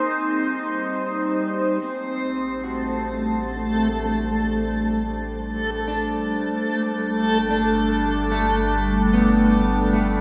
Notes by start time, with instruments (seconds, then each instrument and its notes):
Already playing: ambient pad G3 D#4 C5, synth texture C4 C6
1.82 analog synth bass A1, ambient pad A3, synth texture A3 A5, clean electric guitar C4
2.12 ambient pad D4
2.64 clean electric guitar F#4
5.88 clean electric guitar D4
6.70 analog synth bass G1
7.51 clean electric guitar D4
8.32 clean electric guitar A3
8.86 ambient pad B4
9.13 clean electric guitar B3
9.93 clean electric guitar A3